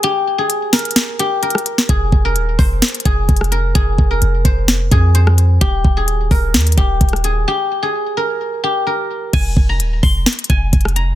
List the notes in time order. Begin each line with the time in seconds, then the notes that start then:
Already playing: A#4
0.03 G4, closed hi-hat
0.38 G#4
0.50 closed hi-hat
0.73 A#4, snare, closed hi-hat, open hi-hat
0.79 closed hi-hat
0.85 closed hi-hat
0.91 closed hi-hat
0.96 snare, closed hi-hat
1.19 G4, closed hi-hat
1.43 A#4, closed hi-hat
1.50 closed hi-hat
1.55 cross-stick, closed hi-hat
1.66 closed hi-hat
1.78 snare
1.89 F1 G#4, kick, closed hi-hat
2.12 F1, kick
2.25 A#4
2.36 D#1, closed hi-hat
2.59 F1 C5, kick, open hi-hat
2.82 snare, closed hi-hat
2.88 closed hi-hat
2.94 closed hi-hat
3.00 closed hi-hat
3.05 F1 G#4, kick, closed hi-hat
3.29 F1, kick, closed hi-hat
3.36 closed hi-hat
3.41 cross-stick, closed hi-hat
3.52 A#4, closed hi-hat
3.75 F1 G#4, kick, closed hi-hat
3.98 F1, kick
4.11 A#4
4.22 F1, closed hi-hat
4.45 F1 C5, kick, closed hi-hat
4.68 snare, closed hi-hat
4.91 F2 G#4, kick, closed hi-hat
5.15 C5, closed hi-hat
5.27 cross-stick
5.38 closed hi-hat
5.61 D#1 G4, kick, closed hi-hat
5.85 D#1, kick
5.97 G#4
6.08 closed hi-hat
6.31 D#1 A#4, kick, open hi-hat
6.54 D#2, snare, closed hi-hat
6.60 closed hi-hat
6.67 closed hi-hat
6.72 closed hi-hat
6.78 D#1 G4, kick, closed hi-hat
7.01 D#1, kick, closed hi-hat
7.09 closed hi-hat
7.13 cross-stick, closed hi-hat
7.24 G#4, closed hi-hat
7.48 G4
7.83 G#4
8.17 A#4
8.64 G4
8.87 A#4
9.33 F1 G#5, kick, closed hi-hat, crash
9.57 F1, kick
9.69 A#5
9.80 D#1, closed hi-hat
10.03 F1 C6, kick, open hi-hat
10.26 snare, closed hi-hat
10.33 closed hi-hat
10.39 closed hi-hat
10.44 closed hi-hat
10.50 F1 G#5, kick, closed hi-hat
10.73 F1, kick, closed hi-hat
10.81 closed hi-hat
10.85 cross-stick, closed hi-hat
10.96 A#5, closed hi-hat